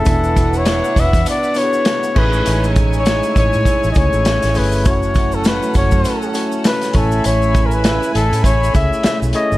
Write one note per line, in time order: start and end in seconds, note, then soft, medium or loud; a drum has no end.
0.00 0.58 A4 loud
0.05 0.80 E1 loud
0.05 1.83 B2 medium
0.05 0.97 B3 medium
0.05 1.83 B3 medium
0.05 0.97 D4 medium
0.05 2.12 D4 medium
0.05 0.97 E4 medium
0.05 1.83 E4 medium
0.05 2.12 B4 medium
0.05 0.98 E5 medium
0.05 2.12 F#5 loud
0.05 0.97 G#5 medium
0.05 kick loud
0.05 closed hi-hat medium
0.05 shaker medium
0.24 shaker soft
0.36 kick medium
0.36 closed hi-hat medium
0.36 shaker medium
0.53 1.01 C#5 loud
0.53 shaker medium
0.66 snare loud
0.66 closed hi-hat medium
0.66 shaker medium
0.84 shaker medium
0.96 1.11 E1 medium
0.96 1.28 E5 loud
0.96 kick loud
0.96 closed hi-hat medium
0.96 shaker medium
1.13 1.24 E2 loud
1.13 kick loud
1.13 closed hi-hat medium
1.13 shaker medium
1.26 1.59 D5 loud
1.26 closed hi-hat medium
1.26 shaker medium
1.43 shaker medium
1.54 2.03 B3 medium
1.54 2.04 D4 medium
1.54 2.04 E4 medium
1.54 1.64 F#4 medium
1.54 2.04 C#5 medium
1.54 2.20 C#5 loud
1.54 closed hi-hat medium
1.54 shaker soft
1.63 2.07 G#4 medium
1.73 shaker medium
1.85 snare loud
1.85 closed hi-hat loud
1.85 shaker medium
2.03 shaker medium
2.15 2.40 A1 medium
2.15 4.51 A2 medium
2.15 4.52 G#3 medium
2.15 3.12 A3 medium
2.15 3.12 C#4 medium
2.15 4.52 D#4 medium
2.15 3.12 E4 medium
2.15 4.82 E4 medium
2.15 3.13 G#4 medium
2.15 2.67 B4 loud
2.15 3.13 C#5 medium
2.15 4.82 C#5 medium
2.15 4.82 G#5 medium
2.15 kick loud
2.15 crash medium
2.33 shaker soft
2.46 3.20 A1 loud
2.46 closed hi-hat medium
2.46 shaker medium
2.64 shaker soft
2.76 kick loud
2.76 closed hi-hat medium
2.76 shaker medium
2.93 3.34 C#5 loud
2.93 shaker soft
3.06 snare loud
3.06 closed hi-hat medium
3.06 shaker medium
3.23 shaker medium
3.36 3.50 A1 medium
3.36 3.87 C#5 loud
3.36 kick loud
3.36 closed hi-hat medium
3.36 shaker medium
3.53 3.65 A2 medium
3.53 shaker medium
3.65 kick loud
3.65 closed hi-hat medium
3.65 shaker medium
3.84 3.94 A1 medium
3.84 shaker medium
3.91 3.99 D#5 medium
3.91 shaker medium
3.96 4.10 C#2 loud
3.96 4.43 A3 medium
3.96 4.44 C#4 medium
3.96 4.44 E4 medium
3.96 4.44 G#4 medium
3.96 4.44 C#5 medium
3.96 4.59 C#5 loud
3.96 kick loud
3.96 closed hi-hat medium
4.13 4.38 A1 medium
4.13 shaker medium
4.25 snare loud
4.25 closed hi-hat medium
4.25 shaker medium
4.43 4.59 A1 loud
4.43 snare soft
4.43 closed hi-hat medium
4.43 shaker medium
4.54 4.86 G1 medium
4.54 4.79 A3 medium
4.54 4.79 C#4 medium
4.54 4.79 E4 medium
4.54 4.79 G#4 medium
4.54 4.88 B4 medium
4.54 4.79 C#5 medium
4.54 open hi-hat medium
4.54 shaker soft
4.72 shaker soft
4.84 5.59 F#1 loud
4.84 6.61 A2 medium
4.84 6.61 F#3 medium
4.84 5.75 A3 medium
4.84 5.76 C#4 medium
4.84 6.91 C#4 medium
4.84 6.61 C#4 medium
4.84 5.76 E4 medium
4.84 5.76 F#4 medium
4.84 6.91 A4 medium
4.84 5.76 C#5 medium
4.84 5.36 C#5 loud
4.84 6.91 F#5 loud
4.84 kick loud
4.84 closed hi-hat medium
4.84 shaker medium
5.03 shaker medium
5.15 kick loud
5.15 closed hi-hat medium
5.15 shaker medium
5.32 5.48 A4 medium
5.32 shaker soft
5.44 5.76 B4 medium
5.44 snare loud
5.44 closed hi-hat loud
5.44 shaker medium
5.63 shaker medium
5.74 5.89 F#1 medium
5.74 6.32 C#5 medium
5.74 kick loud
5.74 closed hi-hat medium
5.74 shaker medium
5.91 6.03 F#2 loud
5.91 kick loud
5.91 shaker medium
6.05 closed hi-hat medium
6.05 shaker medium
6.22 shaker medium
6.34 6.82 A3 medium
6.34 6.82 C#4 medium
6.34 6.83 E4 medium
6.34 6.83 F#4 medium
6.34 6.83 C#5 medium
6.34 closed hi-hat medium
6.34 shaker medium
6.52 shaker soft
6.64 6.98 B4 loud
6.64 snare loud
6.64 closed hi-hat loud
6.64 shaker medium
6.81 snare soft
6.81 closed hi-hat medium
6.81 shaker medium
6.93 7.19 A1 medium
6.93 9.30 C#3 medium
6.93 7.91 A3 medium
6.93 9.30 A3 medium
6.93 7.91 C#4 medium
6.93 9.58 E4 medium
6.93 7.91 E4 medium
6.93 9.30 E4 medium
6.93 7.28 A4 medium
6.93 7.92 C#5 medium
6.93 9.58 G#5 medium
6.93 7.92 G#5 medium
6.93 9.58 B5 loud
6.93 kick loud
6.93 closed hi-hat medium
7.12 shaker medium
7.24 7.99 A1 loud
7.24 7.68 C#5 loud
7.24 closed hi-hat medium
7.24 shaker medium
7.42 shaker soft
7.55 kick loud
7.55 closed hi-hat medium
7.55 shaker medium
7.66 7.75 A#4 medium
7.71 8.14 B4 loud
7.71 shaker medium
7.84 snare loud
7.84 closed hi-hat loud
7.84 shaker medium
8.03 shaker medium
8.15 8.29 A1 medium
8.15 8.46 A4 loud
8.15 closed hi-hat medium
8.15 shaker medium
8.32 8.42 A2 loud
8.32 closed hi-hat medium
8.32 shaker medium
8.44 8.68 A1 medium
8.44 8.74 C#5 loud
8.44 kick loud
8.44 closed hi-hat medium
8.44 shaker medium
8.64 shaker medium
8.73 8.89 C#2 loud
8.73 9.21 A3 medium
8.73 9.22 C#4 medium
8.73 9.22 E4 medium
8.73 9.22 G#4 medium
8.73 9.22 C#5 medium
8.73 9.03 E5 loud
8.73 kick loud
8.73 closed hi-hat medium
8.73 shaker medium
8.93 shaker medium
9.03 9.18 E5 loud
9.03 muted fingered electric bass stroke soft
9.03 snare loud
9.03 closed hi-hat medium
9.03 shaker medium
9.22 9.32 B1 loud
9.22 shaker medium
9.33 9.58 A3 medium
9.33 9.58 C#4 medium
9.33 9.58 E4 medium
9.33 9.58 G#4 medium
9.33 9.58 C#5 medium
9.33 9.58 D#5 loud
9.33 closed hi-hat medium
9.52 9.58 G1 medium
9.52 shaker soft